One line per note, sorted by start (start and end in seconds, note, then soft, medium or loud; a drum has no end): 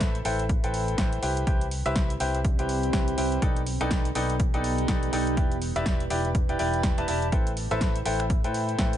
0.00 0.23 A1 medium
0.00 0.16 E4 medium
0.00 0.18 E4 medium
0.00 0.16 A4 medium
0.00 2.12 A4 medium
0.00 0.16 B4 medium
0.00 0.16 C5 medium
0.00 0.16 E5 loud
0.00 3.42 E5 medium
0.00 0.21 G5 medium
0.00 kick loud
0.00 snare loud
0.00 closed hi-hat medium
0.15 closed hi-hat soft
0.25 0.61 A1 medium
0.25 0.42 E4 medium
0.25 0.42 A4 medium
0.25 0.42 B4 medium
0.25 0.42 C5 medium
0.25 0.42 G5 loud
0.25 open hi-hat loud
0.29 2.03 B5 medium
0.39 closed hi-hat soft
0.49 kick loud
0.49 closed hi-hat medium
0.64 0.96 A1 medium
0.64 0.96 E4 medium
0.64 0.96 A4 medium
0.64 0.96 B4 medium
0.64 0.96 C5 medium
0.64 0.96 G5 medium
0.64 closed hi-hat soft
0.74 open hi-hat loud
0.88 closed hi-hat soft
0.98 1.20 E4 medium
0.98 1.20 A4 medium
0.98 1.20 B4 medium
0.98 1.20 C5 medium
0.98 1.20 G5 medium
0.98 kick loud
0.98 snare loud
0.98 closed hi-hat medium
1.13 closed hi-hat soft
1.23 1.45 C2 medium
1.23 3.42 C4 medium
1.23 1.44 E4 medium
1.23 1.44 G4 medium
1.23 1.44 B4 medium
1.23 1.44 C5 medium
1.23 1.44 G5 medium
1.23 open hi-hat loud
1.37 closed hi-hat soft
1.47 1.64 E4 medium
1.47 3.42 G4 medium
1.47 1.64 G4 medium
1.47 1.64 B4 medium
1.47 1.64 C5 medium
1.47 1.64 G5 medium
1.47 kick loud
1.47 closed hi-hat medium
1.61 closed hi-hat soft
1.71 open hi-hat loud
1.86 2.18 C2 medium
1.86 2.11 E4 medium
1.86 2.11 G4 medium
1.86 2.11 B4 medium
1.86 2.11 C5 medium
1.86 3.42 D5 medium
1.86 2.11 E5 loud
1.86 closed hi-hat soft
1.96 kick loud
1.96 snare loud
1.96 closed hi-hat medium
2.10 closed hi-hat soft
2.20 2.56 C2 medium
2.20 2.38 E4 medium
2.20 2.38 G4 medium
2.20 2.38 B4 medium
2.20 2.38 C5 medium
2.20 2.38 G5 medium
2.20 open hi-hat loud
2.35 closed hi-hat soft
2.45 kick loud
2.45 closed hi-hat medium
2.59 2.91 C2 medium
2.59 2.91 E4 medium
2.59 2.91 G4 medium
2.59 2.91 B4 medium
2.59 2.91 C5 medium
2.59 2.91 G5 medium
2.59 closed hi-hat soft
2.69 open hi-hat loud
2.83 closed hi-hat soft
2.93 3.15 E4 medium
2.93 3.15 G4 medium
2.93 3.15 B4 medium
2.93 3.15 C5 medium
2.93 3.15 G5 medium
2.93 kick loud
2.93 snare loud
2.93 closed hi-hat medium
3.08 closed hi-hat soft
3.18 3.40 C2 medium
3.18 3.39 E4 medium
3.18 3.39 G4 medium
3.18 3.39 B4 medium
3.18 3.39 C5 medium
3.18 3.39 G5 medium
3.18 open hi-hat loud
3.32 closed hi-hat soft
3.42 6.16 B3 medium
3.42 3.60 D#4 medium
3.42 3.60 A4 medium
3.42 3.60 B4 medium
3.42 3.60 D5 medium
3.42 3.60 G5 medium
3.42 kick loud
3.42 closed hi-hat medium
3.56 closed hi-hat soft
3.67 open hi-hat loud
3.72 5.37 G4 medium
3.81 4.13 B1 loud
3.81 4.06 D#4 loud
3.81 4.06 A4 medium
3.81 4.06 B4 medium
3.81 4.06 D5 medium
3.81 4.06 G5 loud
3.81 closed hi-hat soft
3.91 kick loud
3.91 snare loud
3.91 closed hi-hat medium
4.05 7.32 B4 medium
4.05 closed hi-hat soft
4.15 4.51 B1 medium
4.15 4.33 D#4 medium
4.15 4.33 A4 medium
4.15 4.33 B4 medium
4.15 4.33 D5 medium
4.15 4.33 G5 loud
4.15 open hi-hat loud
4.30 5.37 D#4 medium
4.30 closed hi-hat soft
4.40 kick loud
4.40 closed hi-hat medium
4.54 4.86 B1 medium
4.54 4.86 D#4 medium
4.54 4.86 A4 medium
4.54 4.86 B4 medium
4.54 4.86 D5 medium
4.54 4.86 G5 medium
4.54 closed hi-hat soft
4.64 open hi-hat loud
4.78 closed hi-hat soft
4.88 5.10 D#4 medium
4.88 5.10 A4 medium
4.88 5.10 B4 medium
4.88 5.10 D5 medium
4.88 5.10 G5 medium
4.88 kick loud
4.88 snare loud
4.88 closed hi-hat medium
5.03 closed hi-hat soft
5.13 5.35 B1 medium
5.13 5.34 D#4 medium
5.13 5.34 A4 medium
5.13 5.34 B4 medium
5.13 5.34 D5 medium
5.13 5.34 G5 medium
5.13 open hi-hat loud
5.27 closed hi-hat soft
5.37 5.73 E1 loud
5.37 5.55 E4 medium
5.37 8.01 E4 medium
5.37 5.55 G4 medium
5.37 5.55 B4 medium
5.37 5.55 D5 medium
5.37 5.55 G5 medium
5.37 kick loud
5.37 closed hi-hat medium
5.52 closed hi-hat soft
5.62 open hi-hat loud
5.76 6.08 E1 medium
5.76 6.01 E4 loud
5.76 6.01 G4 medium
5.76 6.01 B4 medium
5.76 6.01 D5 medium
5.76 6.01 E5 loud
5.76 closed hi-hat soft
5.86 kick loud
5.86 snare loud
5.86 closed hi-hat medium
6.00 closed hi-hat soft
6.10 6.46 E1 loud
6.10 6.28 E4 medium
6.10 6.28 G4 medium
6.10 6.28 B4 medium
6.10 6.28 D5 medium
6.10 6.28 G5 medium
6.10 open hi-hat loud
6.16 8.97 E5 medium
6.25 8.01 G5 medium
6.25 closed hi-hat soft
6.35 kick loud
6.35 closed hi-hat medium
6.49 6.57 E1 medium
6.49 6.57 E4 medium
6.49 6.57 G4 medium
6.49 6.57 B4 medium
6.49 6.57 D5 medium
6.49 6.57 G5 medium
6.49 closed hi-hat soft
6.59 6.95 E1 loud
6.59 6.94 E4 medium
6.59 6.94 G4 medium
6.59 6.94 B4 medium
6.59 6.94 D5 medium
6.59 6.94 G5 loud
6.59 open hi-hat loud
6.74 closed hi-hat soft
6.83 kick loud
6.83 snare loud
6.83 closed hi-hat medium
6.98 7.06 E1 loud
6.98 7.06 E4 medium
6.98 7.06 G4 medium
6.98 7.06 B4 medium
6.98 7.06 D5 medium
6.98 7.06 A5 loud
6.98 closed hi-hat soft
7.08 7.30 E1 medium
7.08 7.25 E4 medium
7.08 7.25 G4 medium
7.08 7.25 B4 medium
7.08 7.25 D5 medium
7.08 7.25 A5 loud
7.08 open hi-hat loud
7.22 closed hi-hat soft
7.32 7.68 A1 loud
7.32 7.50 E4 medium
7.32 7.50 A4 medium
7.32 8.97 A4 medium
7.32 7.50 B4 medium
7.32 7.50 C5 medium
7.32 7.50 G5 medium
7.32 kick loud
7.32 closed hi-hat medium
7.47 closed hi-hat soft
7.57 open hi-hat loud
7.68 8.04 A1 medium
7.68 7.96 E4 loud
7.68 7.96 A4 medium
7.68 7.96 B4 medium
7.68 7.96 C5 medium
7.68 7.96 E5 loud
7.68 8.97 B5 medium
7.68 closed hi-hat soft
7.81 kick loud
7.81 snare loud
7.81 closed hi-hat medium
7.96 closed hi-hat soft
8.05 8.41 A1 medium
8.05 8.23 E4 medium
8.05 8.23 A4 medium
8.05 8.23 B4 medium
8.05 8.23 C5 medium
8.05 8.23 G5 loud
8.05 open hi-hat loud
8.20 finger snap medium
8.20 closed hi-hat soft
8.30 kick loud
8.30 closed hi-hat medium
8.44 8.77 A2 medium
8.44 8.76 E4 medium
8.44 8.76 A4 medium
8.44 8.76 B4 medium
8.44 8.76 C5 medium
8.44 8.76 G5 medium
8.44 closed hi-hat soft
8.54 open hi-hat loud
8.69 closed hi-hat soft
8.79 8.97 A2 medium
8.79 8.97 E4 medium
8.79 8.97 A4 medium
8.79 8.97 B4 medium
8.79 8.97 C5 medium
8.79 8.97 G5 medium
8.79 kick loud
8.79 snare loud
8.79 closed hi-hat medium
8.93 closed hi-hat soft